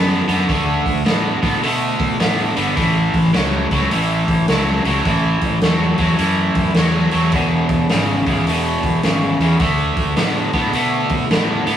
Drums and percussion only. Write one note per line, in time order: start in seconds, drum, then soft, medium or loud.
0.29 open hi-hat medium
0.49 kick loud
0.49 open hi-hat medium
0.86 kick medium
0.86 open hi-hat medium
1.06 snare loud
1.06 open hi-hat medium
1.43 kick medium
1.43 open hi-hat medium
1.63 open hi-hat medium
2.00 kick medium
2.00 open hi-hat soft
2.20 snare loud
2.20 open hi-hat medium
2.56 open hi-hat medium
2.77 kick loud
2.77 open hi-hat medium
3.14 kick medium
3.14 open hi-hat medium
3.34 snare loud
3.34 open hi-hat medium
3.71 kick medium
3.71 open hi-hat medium
3.91 open hi-hat medium
4.28 kick medium
4.28 open hi-hat medium
4.48 snare loud
4.48 open hi-hat medium
4.85 open hi-hat medium
5.05 kick loud
5.05 open hi-hat medium
5.41 kick medium
5.41 open hi-hat soft
5.61 snare loud
5.61 open hi-hat medium
5.98 kick medium
5.98 open hi-hat medium
6.18 open hi-hat medium
6.55 kick medium
6.55 open hi-hat medium
6.74 snare loud
6.74 open hi-hat medium
7.11 open hi-hat medium
7.32 kick loud
7.32 open hi-hat medium
7.69 kick medium
7.69 open hi-hat medium
7.89 snare loud
7.89 open hi-hat medium
8.26 kick medium
8.26 open hi-hat medium
8.47 open hi-hat medium
8.83 kick medium
8.83 open hi-hat medium
9.03 snare loud
9.03 open hi-hat medium
9.40 open hi-hat soft
9.60 kick loud
9.60 open hi-hat medium
9.96 kick medium
9.96 open hi-hat soft
10.16 snare loud
10.16 open hi-hat medium
10.53 kick medium
10.53 open hi-hat soft
10.73 open hi-hat medium
11.09 kick medium
11.09 open hi-hat soft
11.31 snare loud
11.31 open hi-hat medium
11.67 open hi-hat medium